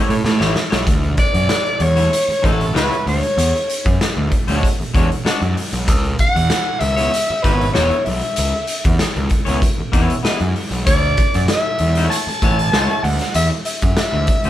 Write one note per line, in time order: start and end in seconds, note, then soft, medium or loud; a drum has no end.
0.00 0.13 A3 medium
0.00 0.13 E4 medium
0.00 0.13 G4 medium
0.00 0.14 C#5 medium
0.00 0.19 C#5 medium
0.09 0.22 A2 medium
0.09 closed hi-hat medium
0.24 0.38 A2 medium
0.24 snare medium
0.40 0.53 A1 medium
0.40 0.54 A3 medium
0.40 0.53 E4 medium
0.40 0.53 G4 medium
0.40 0.53 C#5 medium
0.40 snare medium
0.56 snare medium
0.70 0.85 B1 medium
0.70 0.82 A3 medium
0.70 0.82 E4 medium
0.70 0.82 G4 medium
0.70 0.81 C#5 medium
0.70 snare medium
0.87 1.14 D2 loud
0.87 kick loud
0.87 closed hi-hat medium
1.03 closed hi-hat soft
1.17 1.84 D5 loud
1.17 kick loud
1.17 closed hi-hat medium
1.34 1.47 F#2 medium
1.34 closed hi-hat soft
1.49 snare loud
1.49 closed hi-hat medium
1.66 closed hi-hat soft
1.80 2.07 E2 medium
1.80 2.47 C#5 loud
1.80 closed hi-hat medium
1.96 2.11 A3 medium
1.96 2.10 E4 medium
1.96 2.10 F#4 medium
1.96 2.10 C#5 medium
1.96 closed hi-hat medium
2.13 closed hi-hat loud
2.28 muted picked electric bass stroke soft
2.28 closed hi-hat soft
2.42 2.70 A1 medium
2.42 2.64 A3 medium
2.42 2.64 E4 medium
2.42 2.64 F#4 medium
2.42 2.76 A4 medium
2.42 2.64 C#5 medium
2.42 kick loud
2.42 closed hi-hat medium
2.61 closed hi-hat soft
2.74 2.88 C#2 medium
2.74 2.95 A3 medium
2.74 2.95 E4 medium
2.74 2.95 F#4 medium
2.74 3.05 B4 medium
2.74 2.96 C#5 medium
2.74 snare loud
2.74 closed hi-hat medium
2.93 closed hi-hat soft
3.06 3.20 D2 medium
3.06 3.97 C#5 medium
3.06 open hi-hat medium
3.23 closed hi-hat soft
3.37 3.52 E2 loud
3.37 closed hi-hat loud
3.55 closed hi-hat soft
3.70 closed hi-hat medium
3.86 3.98 F#2 medium
3.86 kick loud
3.86 closed hi-hat medium
4.01 snare loud
4.01 closed hi-hat medium
4.17 4.29 D2 loud
4.31 kick medium
4.31 closed hi-hat medium
4.48 4.61 D2 medium
4.48 4.68 G#3 medium
4.48 4.68 D4 medium
4.48 4.68 F#4 medium
4.48 4.67 C#5 medium
4.48 closed hi-hat medium
4.63 kick medium
4.63 closed hi-hat medium
4.80 muted picked electric bass stroke soft
4.80 closed hi-hat soft
4.94 5.08 E2 medium
4.94 5.08 G#3 medium
4.94 5.09 D4 medium
4.94 5.09 F#4 medium
4.94 5.09 C#5 loud
4.94 kick loud
4.94 closed hi-hat medium
5.12 closed hi-hat soft
5.25 5.39 G#3 medium
5.25 5.40 D4 medium
5.25 5.40 F#4 medium
5.25 5.40 D5 medium
5.25 muted picked electric bass stroke soft
5.25 snare medium
5.25 closed hi-hat medium
5.42 5.54 F#2 medium
5.42 closed hi-hat soft
5.57 open hi-hat medium
5.73 5.88 B1 medium
5.73 closed hi-hat medium
5.88 6.14 C#2 loud
5.88 kick loud
5.88 closed hi-hat loud
6.04 closed hi-hat soft
6.19 6.81 F#5 loud
6.19 kick loud
6.19 closed hi-hat medium
6.36 6.48 E2 medium
6.36 closed hi-hat medium
6.50 snare loud
6.50 closed hi-hat medium
6.80 7.08 C#2 medium
6.80 7.44 E5 loud
6.80 closed hi-hat medium
6.96 7.11 B3 medium
6.96 7.10 E4 medium
6.96 7.10 G#4 medium
6.96 7.10 C#5 loud
6.96 closed hi-hat medium
7.14 closed hi-hat medium
7.30 muted picked electric bass stroke soft
7.43 7.71 G#1 medium
7.43 7.64 B3 medium
7.43 7.65 E4 medium
7.43 7.65 G#4 medium
7.43 7.73 B4 medium
7.43 7.65 C#5 medium
7.43 kick loud
7.43 closed hi-hat medium
7.61 closed hi-hat soft
7.73 7.90 E1 loud
7.73 7.95 B3 medium
7.73 7.95 E4 medium
7.73 7.95 G#4 medium
7.73 8.03 C#5 medium
7.73 7.96 C#5 medium
7.73 snare medium
7.73 closed hi-hat medium
7.91 closed hi-hat soft
8.05 8.21 B1 medium
8.05 8.95 E5 medium
8.05 open hi-hat medium
8.21 closed hi-hat soft
8.36 8.52 C#2 loud
8.36 closed hi-hat loud
8.67 closed hi-hat medium
8.84 8.98 E2 medium
8.84 kick loud
8.84 closed hi-hat medium
8.99 snare medium
8.99 closed hi-hat medium
9.16 9.29 C#2 medium
9.16 closed hi-hat soft
9.30 kick medium
9.30 closed hi-hat medium
9.45 9.60 C#2 medium
9.45 9.60 B3 medium
9.45 9.60 E4 medium
9.45 9.59 G#4 medium
9.45 9.59 C#5 medium
9.45 closed hi-hat medium
9.62 kick loud
9.62 closed hi-hat medium
9.78 muted picked electric bass stroke soft
9.92 10.07 E2 medium
9.92 10.13 B3 medium
9.92 10.13 E4 medium
9.92 10.14 G#4 medium
9.92 10.14 C#5 medium
9.92 kick loud
9.92 closed hi-hat medium
10.10 closed hi-hat medium
10.23 10.38 B3 medium
10.23 10.38 E4 medium
10.23 10.39 G#4 medium
10.23 10.39 D#5 medium
10.23 muted picked electric bass stroke soft
10.23 snare loud
10.23 closed hi-hat medium
10.41 10.53 F#2 medium
10.41 closed hi-hat soft
10.56 open hi-hat medium
10.71 10.84 B1 medium
10.71 closed hi-hat soft
10.86 11.13 D2 loud
10.86 11.45 D5 loud
10.86 kick loud
10.86 closed hi-hat loud
11.03 closed hi-hat soft
11.17 kick loud
11.17 closed hi-hat medium
11.34 11.47 F#2 medium
11.34 closed hi-hat medium
11.48 12.07 E5 medium
11.48 snare loud
11.48 closed hi-hat medium
11.79 12.06 E2 medium
11.79 closed hi-hat medium
11.95 12.16 A3 medium
11.95 12.16 E4 medium
11.95 12.16 F#4 medium
11.95 12.16 C#5 medium
11.95 closed hi-hat medium
12.10 13.05 A5 loud
12.10 closed hi-hat loud
12.27 muted picked electric bass stroke soft
12.27 closed hi-hat soft
12.42 12.69 A1 medium
12.42 12.56 A3 medium
12.42 12.57 E4 medium
12.42 12.57 F#4 medium
12.42 12.57 C#5 medium
12.42 kick loud
12.42 closed hi-hat medium
12.59 closed hi-hat medium
12.72 12.87 C#2 medium
12.72 12.94 A3 medium
12.72 12.95 E4 medium
12.72 12.95 F#4 medium
12.72 12.95 C#5 medium
12.72 snare loud
12.72 closed hi-hat medium
12.90 closed hi-hat soft
13.03 13.18 D2 medium
13.03 13.35 F#5 medium
13.03 open hi-hat medium
13.19 snare soft
13.19 closed hi-hat medium
13.34 13.49 E2 medium
13.34 13.49 E5 loud
13.34 closed hi-hat loud
13.65 14.50 E5 medium
13.65 closed hi-hat medium
13.82 13.95 F#2 medium
13.82 kick medium
13.82 closed hi-hat medium
13.97 snare loud
13.97 closed hi-hat medium
14.13 14.26 D2 loud
14.27 kick medium
14.27 closed hi-hat medium
14.44 14.50 D2 medium
14.44 14.50 F#4 medium
14.44 14.50 G#4 medium
14.44 14.50 C#5 medium
14.44 closed hi-hat soft